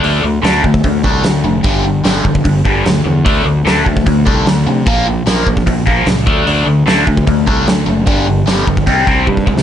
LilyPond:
<<
  \new Staff \with { instrumentName = "Overdriven electric guitar" } { \clef bass \time 4/4 \key d \minor \tempo 4 = 149 <d a d'>8 <d a>8 <d a d'>8 <d a>8 <d a>8 <d a d'>8 <d a>8 <d a>8 | <g, d g>8 <g, d>8 <g, d g>8 <g, d>8 <g, d>8 <g, d g>8 <g, d>8 <g, d>8 | <d a d'>8 <d a>8 <d a d'>8 <d a>8 <d a>8 <d a d'>8 <d a>8 <d a>8 | <bes, f bes>8 <bes, f>8 <bes, f bes>8 <bes, f>8 <bes, f>8 <bes, f bes>8 <bes, f>8 <d a d'>8 |
<d a d'>8 <d a>8 <d a d'>8 <d a>8 <d a>8 <d a d'>8 <d a>8 <d a>8 | <g, d g>8 <g, d>8 <g, d g>8 <g, d>8 <c g c'>8 <c g c'>8 <c g>8 <c g>8 | }
  \new Staff \with { instrumentName = "Fingered electric bass" } { \clef bass \time 4/4 \key d \minor d,8 d,8 d,8 d,8 d,8 c,8 d,8 f,,8 | g,,4 g,,8 g,,8 g,,8 g,,8 d,8 e,8 | d,8 d,8 d,8 d,8 d,8 c,8 d,8 c8 | bes,,4 bes,,8 bes,,8 bes,,8 bes,,8 cis,8 d,8 |
d,8 d,8 d,8 d,8 d,8 c,8 d,8 fis,,8 | g,,4 g,,8 g,,8 c,8 c,8 g,8 cis,8 | }
  \new DrumStaff \with { instrumentName = "Drums" } \drummode { \time 4/4 hho4 <hho sn>8 bd16 bd16 <hho bd>8 bd8 <hho sn>4 | <hho bd>4 <hho sn>8 bd16 bd16 <hho bd>8 bd8 <hho sn>4 | <hho bd>4 <hho sn>8 bd16 bd16 <hho bd>8 bd8 <hho sn>4 | <hho bd>4 <hho sn>8 bd16 bd16 <hho bd>8 bd8 <hho sn>8 bd8 |
hho4 <hho sn>8 bd16 bd16 <hho bd>8 bd8 <hho sn>4 | <hho bd>4 <hho sn>8 bd16 bd16 <hho bd>8 bd8 bd16 bd16 bd16 sn16 | }
>>